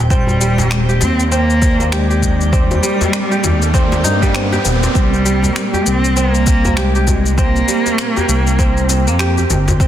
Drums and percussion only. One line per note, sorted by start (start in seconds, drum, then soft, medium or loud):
0.10 kick loud
0.10 shaker soft
0.27 djembe tone medium
0.27 djembe bass medium
0.27 shaker soft
0.41 shaker medium
0.58 djembe slap medium
0.58 djembe tone medium
0.58 shaker soft
0.71 finger snap loud
0.71 shaker soft
0.89 shaker soft
1.01 djembe slap medium
1.01 djembe bass medium
1.01 shaker medium
1.20 shaker soft
1.32 shaker soft
1.50 shaker soft
1.62 kick loud
1.62 shaker medium
1.80 djembe slap soft
1.80 shaker soft
1.92 finger snap loud
1.92 shaker soft
2.11 shaker soft
2.23 kick medium
2.23 shaker medium
2.41 shaker soft
2.53 kick loud
2.53 shaker soft
2.71 djembe tone medium
2.71 djembe bass medium
2.71 shaker soft
2.83 shaker medium
3.01 djembe slap medium
3.01 djembe tone medium
3.01 shaker soft
3.13 finger snap loud
3.13 shaker soft
3.32 shaker soft
3.44 djembe slap medium
3.44 djembe bass medium
3.44 shaker medium
3.62 shaker soft
3.74 kick loud
3.74 djembe tone soft
3.74 shaker soft
3.92 djembe slap medium
3.92 shaker soft
4.04 djembe tone soft
4.04 shaker medium
4.22 kick medium
4.22 shaker soft
4.35 finger snap loud
4.35 shaker soft
4.53 djembe slap medium
4.53 shaker soft
4.65 djembe tone soft
4.65 shaker medium
4.83 djembe slap medium
4.83 shaker soft
4.95 kick loud
4.95 shaker soft
5.14 shaker soft
5.26 shaker medium
5.43 djembe tone medium
5.43 shaker soft
5.56 finger snap loud
5.56 shaker soft
5.73 djembe tone medium
5.73 shaker soft
5.86 shaker medium
6.04 shaker soft
6.17 shaker soft
6.34 shaker soft
6.47 kick loud
6.47 shaker medium
6.65 djembe bass medium
6.65 shaker soft
6.77 finger snap loud
6.77 shaker soft
6.95 shaker soft
7.07 kick medium
7.07 djembe tone medium
7.07 djembe bass medium
7.07 shaker medium
7.26 shaker soft
7.38 kick loud
7.38 shaker soft
7.55 djembe slap soft
7.55 shaker soft
7.68 shaker medium
7.86 djembe slap soft
7.86 shaker soft
7.98 finger snap loud
7.98 shaker soft
8.17 djembe tone medium
8.17 shaker soft
8.29 shaker medium
8.47 shaker soft
8.59 kick loud
8.59 shaker soft
8.77 shaker soft
8.89 djembe slap soft
8.89 shaker medium
9.07 shaker soft
9.19 finger snap loud
9.19 shaker soft
9.38 djembe tone soft
9.38 shaker soft
9.50 djembe tone medium
9.50 shaker medium
9.68 djembe slap medium
9.68 djembe bass medium
9.68 shaker soft
9.80 kick loud
9.80 shaker soft